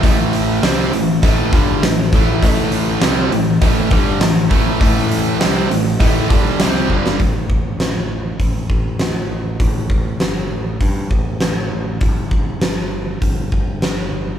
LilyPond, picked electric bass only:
\new Staff \with { instrumentName = "Picked electric bass" } { \clef bass \time 4/4 \key a \minor \tempo 4 = 100 a,,4 c,8 a,,8 a,,8 g,,8 a,,8 a,,8 | a,,4 c,8 a,,8 a,,8 g,,8 a,,8 a,,8 | a,,4 c,8 a,,8 a,,8 g,,8 c,8 g,,8 | a,,4 a,,4 a,,8 a,,8 a,,8 a,,8 |
a,,8 a,,8 g,,8 a,,8 g,8 a,,8 a,,8 a,,8 | g,,4 g,,4 g,,8 g,,8 g,,8 g,,8 | }